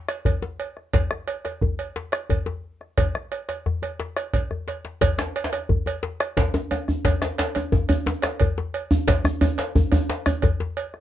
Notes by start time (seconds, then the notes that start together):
0.09 bombo rim, cowbell
0.25 bombo low, cowbell, djembe bass
0.42 djembe slap, djembe tone
0.60 cowbell
0.77 bombo rim, djembe slap
0.93 bombo low, cowbell, djembe slap, djembe bass
1.11 bombo rim, djembe tone
1.28 bombo rim, cowbell
1.45 bombo rim, cowbell, djembe slap
1.61 bombo low, djembe bass
1.79 cowbell
1.96 djembe slap
2.12 bombo rim, cowbell
2.30 bombo low, cowbell, djembe bass
2.46 djembe slap, djembe tone
2.81 bombo rim, djembe slap
2.98 bombo rim, bombo low, cowbell, djembe slap, djembe bass
3.15 bombo rim, djembe slap, djembe tone
3.32 bombo rim, cowbell
3.49 bombo rim, cowbell, djembe slap
3.66 bombo rim, djembe slap, djembe bass
3.82 cowbell, djembe slap, djembe tone
4.00 bombo rim, djembe slap
4.17 bombo rim, cowbell
4.33 bombo low, cowbell, djembe bass
4.51 bombo rim, djembe bass
4.68 bombo rim, cowbell, djembe slap
4.85 bombo rim, djembe slap
5.01 bombo low, cowbell, djembe slap, djembe bass
5.18 bombo rim, djembe slap, djembe tone
5.36 bombo rim, cowbell
5.44 djembe slap
5.53 bombo rim, cowbell, djembe slap
5.69 bombo low, djembe bass
5.86 cowbell, djembe tone
6.03 djembe slap
6.20 bombo rim, cowbell
6.37 bombo low, cowbell, djembe slap, djembe bass
6.54 djembe slap, djembe tone
6.71 cowbell, djembe tone
6.88 bombo rim, djembe bass
7.05 bombo low, cowbell, djembe slap, djembe tone, djembe bass
7.22 bombo rim, djembe slap, djembe tone
7.38 bombo rim, cowbell, djembe slap
7.55 bombo rim, cowbell, djembe slap, djembe tone
7.72 bombo low, djembe tone, djembe bass
7.89 cowbell, djembe tone, djembe bass
8.06 djembe slap, djembe tone
8.22 bombo rim, cowbell, djembe slap
8.40 bombo low, cowbell, djembe bass
8.58 djembe slap, djembe tone
8.74 cowbell
8.91 bombo rim, djembe slap, djembe bass
9.08 bombo low, cowbell, djembe slap, djembe bass
9.25 bombo rim, djembe tone, djembe bass
9.41 bombo rim, cowbell, djembe bass
9.58 bombo rim, cowbell, djembe slap
9.75 bombo low, djembe bass
9.92 cowbell, djembe tone, djembe bass
10.09 djembe slap
10.26 bombo rim, cowbell, djembe bass
10.42 bombo low, cowbell, djembe bass
10.60 djembe slap, djembe tone
10.77 cowbell
10.94 bombo rim, djembe slap